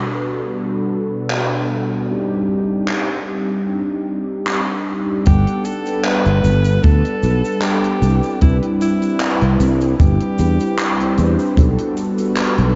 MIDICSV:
0, 0, Header, 1, 5, 480
1, 0, Start_track
1, 0, Key_signature, 1, "major"
1, 0, Tempo, 789474
1, 1277, Time_signature, 4, 2, 24, 8
1, 7754, End_track
2, 0, Start_track
2, 0, Title_t, "Alto saxophone"
2, 0, Program_c, 0, 65
2, 3199, Note_on_c, 0, 67, 104
2, 3436, Note_on_c, 0, 69, 101
2, 3445, Note_off_c, 0, 67, 0
2, 3673, Note_on_c, 0, 71, 114
2, 3682, Note_off_c, 0, 69, 0
2, 4154, Note_on_c, 0, 69, 109
2, 4164, Note_off_c, 0, 71, 0
2, 4637, Note_on_c, 0, 67, 106
2, 4646, Note_off_c, 0, 69, 0
2, 5112, Note_off_c, 0, 67, 0
2, 5116, Note_on_c, 0, 64, 93
2, 5213, Note_off_c, 0, 64, 0
2, 5361, Note_on_c, 0, 64, 97
2, 5897, Note_off_c, 0, 64, 0
2, 6079, Note_on_c, 0, 67, 90
2, 6774, Note_off_c, 0, 67, 0
2, 7754, End_track
3, 0, Start_track
3, 0, Title_t, "Analog polysynth"
3, 0, Program_c, 1, 90
3, 0, Control_c, 1, 64, 127
3, 0, Note_on_c, 1, 47, 79
3, 0, Note_on_c, 1, 55, 74
3, 0, Note_on_c, 1, 59, 68
3, 0, Note_on_c, 1, 62, 73
3, 0, Note_on_c, 1, 66, 71
3, 0, Note_on_c, 1, 69, 90
3, 0, Note_on_c, 1, 71, 84
3, 1008, Note_off_c, 1, 47, 0
3, 1009, Note_off_c, 1, 55, 0
3, 1011, Note_off_c, 1, 59, 0
3, 1013, Note_off_c, 1, 62, 0
3, 1015, Note_off_c, 1, 66, 0
3, 1016, Note_off_c, 1, 71, 0
3, 1034, Note_on_c, 1, 47, 71
3, 1035, Note_on_c, 1, 55, 64
3, 1037, Note_on_c, 1, 59, 64
3, 1039, Note_on_c, 1, 62, 63
3, 1041, Note_on_c, 1, 66, 66
3, 1042, Note_off_c, 1, 69, 0
3, 1042, Note_on_c, 1, 69, 79
3, 1249, Note_off_c, 1, 47, 0
3, 1250, Note_off_c, 1, 55, 0
3, 1251, Note_off_c, 1, 59, 0
3, 1252, Note_off_c, 1, 62, 0
3, 1253, Note_off_c, 1, 66, 0
3, 1253, Note_off_c, 1, 69, 0
3, 1274, Note_on_c, 1, 55, 94
3, 1277, Note_on_c, 1, 60, 85
3, 1279, Note_on_c, 1, 62, 83
3, 1281, Note_on_c, 1, 63, 87
3, 1284, Control_c, 1, 64, 0
3, 1284, Note_on_c, 1, 67, 106
3, 1409, Control_c, 1, 64, 127
3, 1504, Note_off_c, 1, 55, 0
3, 1506, Note_off_c, 1, 60, 0
3, 1507, Note_off_c, 1, 62, 0
3, 1508, Note_off_c, 1, 63, 0
3, 1509, Note_off_c, 1, 67, 0
3, 1641, Note_on_c, 1, 55, 78
3, 1646, Note_on_c, 1, 60, 73
3, 1650, Note_on_c, 1, 62, 73
3, 1654, Note_on_c, 1, 63, 70
3, 1659, Note_on_c, 1, 67, 89
3, 3168, Note_off_c, 1, 55, 0
3, 3170, Note_off_c, 1, 60, 0
3, 3172, Note_off_c, 1, 62, 0
3, 3174, Note_off_c, 1, 63, 0
3, 3177, Note_off_c, 1, 67, 0
3, 3194, Note_on_c, 1, 55, 84
3, 3197, Note_on_c, 1, 59, 76
3, 3199, Note_on_c, 1, 62, 75
3, 3201, Note_on_c, 1, 78, 77
3, 3205, Control_c, 1, 64, 0
3, 3205, Note_on_c, 1, 69, 93
3, 3318, Control_c, 1, 64, 127
3, 3535, Note_off_c, 1, 55, 0
3, 3536, Note_off_c, 1, 59, 0
3, 3537, Note_off_c, 1, 62, 0
3, 3538, Note_off_c, 1, 78, 0
3, 3540, Note_off_c, 1, 69, 0
3, 3561, Note_on_c, 1, 55, 82
3, 3565, Note_on_c, 1, 59, 74
3, 3569, Note_on_c, 1, 62, 77
3, 3574, Note_on_c, 1, 78, 72
3, 3578, Note_on_c, 1, 71, 89
3, 4848, Note_off_c, 1, 55, 0
3, 4850, Note_off_c, 1, 59, 0
3, 4852, Note_off_c, 1, 62, 0
3, 4854, Note_off_c, 1, 78, 0
3, 4856, Note_off_c, 1, 71, 0
3, 4875, Note_on_c, 1, 55, 78
3, 4878, Note_on_c, 1, 60, 65
3, 4880, Note_on_c, 1, 62, 67
3, 4881, Note_on_c, 1, 64, 67
3, 4883, Note_on_c, 1, 71, 80
3, 4885, Control_c, 1, 64, 0
3, 5003, Control_c, 1, 64, 127
3, 5090, Note_off_c, 1, 55, 0
3, 5091, Note_off_c, 1, 60, 0
3, 5092, Note_off_c, 1, 62, 0
3, 5093, Note_off_c, 1, 64, 0
3, 5094, Note_off_c, 1, 71, 0
3, 5113, Note_on_c, 1, 55, 95
3, 5116, Note_on_c, 1, 60, 94
3, 5117, Note_on_c, 1, 62, 90
3, 5120, Note_on_c, 1, 64, 90
3, 5122, Note_on_c, 1, 71, 111
3, 5344, Note_off_c, 1, 55, 0
3, 5345, Note_off_c, 1, 60, 0
3, 5346, Note_off_c, 1, 62, 0
3, 5347, Note_off_c, 1, 64, 0
3, 5348, Note_off_c, 1, 71, 0
3, 5479, Note_on_c, 1, 55, 86
3, 5484, Note_on_c, 1, 60, 77
3, 5488, Note_on_c, 1, 62, 76
3, 5493, Note_on_c, 1, 64, 79
3, 5497, Note_on_c, 1, 71, 91
3, 6657, Note_off_c, 1, 55, 0
3, 6660, Note_off_c, 1, 60, 0
3, 6662, Note_off_c, 1, 62, 0
3, 6664, Note_off_c, 1, 64, 0
3, 6666, Note_off_c, 1, 71, 0
3, 6686, Note_on_c, 1, 55, 96
3, 6689, Note_on_c, 1, 60, 83
3, 6692, Note_on_c, 1, 62, 85
3, 6693, Note_on_c, 1, 64, 85
3, 6695, Note_on_c, 1, 72, 102
3, 7010, Note_off_c, 1, 55, 0
3, 7012, Note_off_c, 1, 60, 0
3, 7013, Note_off_c, 1, 62, 0
3, 7014, Note_off_c, 1, 64, 0
3, 7015, Note_off_c, 1, 72, 0
3, 7038, Note_on_c, 1, 55, 84
3, 7039, Note_on_c, 1, 59, 78
3, 7041, Note_on_c, 1, 62, 81
3, 7043, Note_on_c, 1, 66, 76
3, 7045, Control_c, 1, 64, 0
3, 7045, Note_on_c, 1, 69, 90
3, 7157, Control_c, 1, 64, 127
3, 7376, Note_off_c, 1, 55, 0
3, 7377, Note_off_c, 1, 59, 0
3, 7378, Note_off_c, 1, 62, 0
3, 7379, Note_off_c, 1, 66, 0
3, 7380, Note_off_c, 1, 69, 0
3, 7399, Note_on_c, 1, 55, 82
3, 7404, Note_on_c, 1, 59, 73
3, 7410, Note_on_c, 1, 62, 74
3, 7413, Note_on_c, 1, 66, 77
3, 7418, Note_on_c, 1, 71, 93
3, 7754, Note_off_c, 1, 55, 0
3, 7754, Note_off_c, 1, 59, 0
3, 7754, Note_off_c, 1, 62, 0
3, 7754, Note_off_c, 1, 66, 0
3, 7754, Note_off_c, 1, 71, 0
3, 7754, End_track
4, 0, Start_track
4, 0, Title_t, "Fretless electric bass"
4, 0, Program_c, 2, 35
4, 3204, Note_on_c, 2, 31, 98
4, 3307, Note_off_c, 2, 31, 0
4, 3808, Note_on_c, 2, 31, 82
4, 3897, Note_off_c, 2, 31, 0
4, 3918, Note_on_c, 2, 31, 105
4, 4118, Note_off_c, 2, 31, 0
4, 4160, Note_on_c, 2, 38, 102
4, 4265, Note_off_c, 2, 38, 0
4, 4397, Note_on_c, 2, 35, 83
4, 4504, Note_off_c, 2, 35, 0
4, 4876, Note_on_c, 2, 36, 80
4, 4983, Note_off_c, 2, 36, 0
4, 5119, Note_on_c, 2, 36, 100
4, 5225, Note_off_c, 2, 36, 0
4, 5727, Note_on_c, 2, 36, 84
4, 5817, Note_off_c, 2, 36, 0
4, 5837, Note_on_c, 2, 36, 104
4, 6037, Note_off_c, 2, 36, 0
4, 6079, Note_on_c, 2, 31, 100
4, 6185, Note_off_c, 2, 31, 0
4, 6318, Note_on_c, 2, 40, 83
4, 6424, Note_off_c, 2, 40, 0
4, 6799, Note_on_c, 2, 40, 80
4, 6905, Note_off_c, 2, 40, 0
4, 7036, Note_on_c, 2, 35, 100
4, 7143, Note_off_c, 2, 35, 0
4, 7651, Note_on_c, 2, 35, 84
4, 7739, Note_off_c, 2, 35, 0
4, 7754, End_track
5, 0, Start_track
5, 0, Title_t, "Drums"
5, 793, Note_on_c, 9, 39, 112
5, 854, Note_off_c, 9, 39, 0
5, 1752, Note_on_c, 9, 39, 101
5, 1813, Note_off_c, 9, 39, 0
5, 2717, Note_on_c, 9, 39, 106
5, 2777, Note_off_c, 9, 39, 0
5, 3195, Note_on_c, 9, 42, 107
5, 3197, Note_on_c, 9, 69, 48
5, 3204, Note_on_c, 9, 36, 118
5, 3256, Note_off_c, 9, 42, 0
5, 3258, Note_off_c, 9, 69, 0
5, 3264, Note_off_c, 9, 36, 0
5, 3326, Note_on_c, 9, 42, 55
5, 3386, Note_off_c, 9, 42, 0
5, 3433, Note_on_c, 9, 42, 74
5, 3434, Note_on_c, 9, 69, 70
5, 3494, Note_off_c, 9, 42, 0
5, 3495, Note_off_c, 9, 69, 0
5, 3562, Note_on_c, 9, 69, 49
5, 3567, Note_on_c, 9, 42, 56
5, 3623, Note_off_c, 9, 69, 0
5, 3628, Note_off_c, 9, 42, 0
5, 3670, Note_on_c, 9, 69, 48
5, 3675, Note_on_c, 9, 42, 92
5, 3676, Note_on_c, 9, 39, 117
5, 3731, Note_off_c, 9, 69, 0
5, 3736, Note_off_c, 9, 42, 0
5, 3737, Note_off_c, 9, 39, 0
5, 3803, Note_on_c, 9, 42, 52
5, 3864, Note_off_c, 9, 42, 0
5, 3916, Note_on_c, 9, 69, 73
5, 3918, Note_on_c, 9, 42, 77
5, 3977, Note_off_c, 9, 69, 0
5, 3979, Note_off_c, 9, 42, 0
5, 4039, Note_on_c, 9, 42, 63
5, 4042, Note_on_c, 9, 69, 54
5, 4100, Note_off_c, 9, 42, 0
5, 4103, Note_off_c, 9, 69, 0
5, 4155, Note_on_c, 9, 42, 98
5, 4155, Note_on_c, 9, 69, 50
5, 4160, Note_on_c, 9, 36, 121
5, 4216, Note_off_c, 9, 42, 0
5, 4216, Note_off_c, 9, 69, 0
5, 4221, Note_off_c, 9, 36, 0
5, 4286, Note_on_c, 9, 42, 56
5, 4346, Note_off_c, 9, 42, 0
5, 4395, Note_on_c, 9, 69, 74
5, 4399, Note_on_c, 9, 42, 76
5, 4456, Note_off_c, 9, 69, 0
5, 4459, Note_off_c, 9, 42, 0
5, 4527, Note_on_c, 9, 42, 53
5, 4528, Note_on_c, 9, 69, 61
5, 4588, Note_off_c, 9, 42, 0
5, 4588, Note_off_c, 9, 69, 0
5, 4632, Note_on_c, 9, 39, 115
5, 4635, Note_on_c, 9, 42, 100
5, 4639, Note_on_c, 9, 69, 44
5, 4692, Note_off_c, 9, 39, 0
5, 4696, Note_off_c, 9, 42, 0
5, 4700, Note_off_c, 9, 69, 0
5, 4767, Note_on_c, 9, 42, 50
5, 4827, Note_off_c, 9, 42, 0
5, 4876, Note_on_c, 9, 42, 52
5, 4880, Note_on_c, 9, 69, 77
5, 4937, Note_off_c, 9, 42, 0
5, 4941, Note_off_c, 9, 69, 0
5, 5005, Note_on_c, 9, 69, 54
5, 5065, Note_off_c, 9, 69, 0
5, 5114, Note_on_c, 9, 42, 111
5, 5120, Note_on_c, 9, 36, 113
5, 5120, Note_on_c, 9, 69, 45
5, 5175, Note_off_c, 9, 42, 0
5, 5180, Note_off_c, 9, 36, 0
5, 5181, Note_off_c, 9, 69, 0
5, 5244, Note_on_c, 9, 42, 55
5, 5305, Note_off_c, 9, 42, 0
5, 5355, Note_on_c, 9, 42, 72
5, 5359, Note_on_c, 9, 69, 68
5, 5416, Note_off_c, 9, 42, 0
5, 5420, Note_off_c, 9, 69, 0
5, 5483, Note_on_c, 9, 42, 54
5, 5486, Note_on_c, 9, 69, 56
5, 5544, Note_off_c, 9, 42, 0
5, 5547, Note_off_c, 9, 69, 0
5, 5592, Note_on_c, 9, 69, 42
5, 5594, Note_on_c, 9, 39, 124
5, 5596, Note_on_c, 9, 42, 101
5, 5653, Note_off_c, 9, 69, 0
5, 5655, Note_off_c, 9, 39, 0
5, 5657, Note_off_c, 9, 42, 0
5, 5723, Note_on_c, 9, 42, 49
5, 5784, Note_off_c, 9, 42, 0
5, 5835, Note_on_c, 9, 42, 80
5, 5837, Note_on_c, 9, 69, 76
5, 5896, Note_off_c, 9, 42, 0
5, 5898, Note_off_c, 9, 69, 0
5, 5963, Note_on_c, 9, 69, 54
5, 5965, Note_on_c, 9, 42, 52
5, 6024, Note_off_c, 9, 69, 0
5, 6026, Note_off_c, 9, 42, 0
5, 6078, Note_on_c, 9, 36, 127
5, 6078, Note_on_c, 9, 42, 109
5, 6078, Note_on_c, 9, 69, 51
5, 6138, Note_off_c, 9, 42, 0
5, 6139, Note_off_c, 9, 36, 0
5, 6139, Note_off_c, 9, 69, 0
5, 6203, Note_on_c, 9, 42, 58
5, 6263, Note_off_c, 9, 42, 0
5, 6312, Note_on_c, 9, 69, 76
5, 6316, Note_on_c, 9, 42, 81
5, 6373, Note_off_c, 9, 69, 0
5, 6376, Note_off_c, 9, 42, 0
5, 6444, Note_on_c, 9, 69, 55
5, 6448, Note_on_c, 9, 42, 55
5, 6505, Note_off_c, 9, 69, 0
5, 6508, Note_off_c, 9, 42, 0
5, 6557, Note_on_c, 9, 39, 116
5, 6558, Note_on_c, 9, 42, 104
5, 6560, Note_on_c, 9, 69, 47
5, 6618, Note_off_c, 9, 39, 0
5, 6619, Note_off_c, 9, 42, 0
5, 6621, Note_off_c, 9, 69, 0
5, 6687, Note_on_c, 9, 42, 56
5, 6748, Note_off_c, 9, 42, 0
5, 6794, Note_on_c, 9, 42, 59
5, 6800, Note_on_c, 9, 69, 75
5, 6855, Note_off_c, 9, 42, 0
5, 6861, Note_off_c, 9, 69, 0
5, 6925, Note_on_c, 9, 69, 50
5, 6985, Note_off_c, 9, 69, 0
5, 7035, Note_on_c, 9, 69, 44
5, 7036, Note_on_c, 9, 36, 112
5, 7038, Note_on_c, 9, 42, 102
5, 7096, Note_off_c, 9, 69, 0
5, 7097, Note_off_c, 9, 36, 0
5, 7098, Note_off_c, 9, 42, 0
5, 7164, Note_on_c, 9, 42, 58
5, 7225, Note_off_c, 9, 42, 0
5, 7276, Note_on_c, 9, 42, 78
5, 7278, Note_on_c, 9, 69, 74
5, 7336, Note_off_c, 9, 42, 0
5, 7338, Note_off_c, 9, 69, 0
5, 7405, Note_on_c, 9, 69, 53
5, 7406, Note_on_c, 9, 42, 61
5, 7466, Note_off_c, 9, 69, 0
5, 7467, Note_off_c, 9, 42, 0
5, 7516, Note_on_c, 9, 42, 111
5, 7519, Note_on_c, 9, 39, 110
5, 7519, Note_on_c, 9, 69, 42
5, 7577, Note_off_c, 9, 42, 0
5, 7580, Note_off_c, 9, 39, 0
5, 7580, Note_off_c, 9, 69, 0
5, 7648, Note_on_c, 9, 42, 53
5, 7709, Note_off_c, 9, 42, 0
5, 7754, End_track
0, 0, End_of_file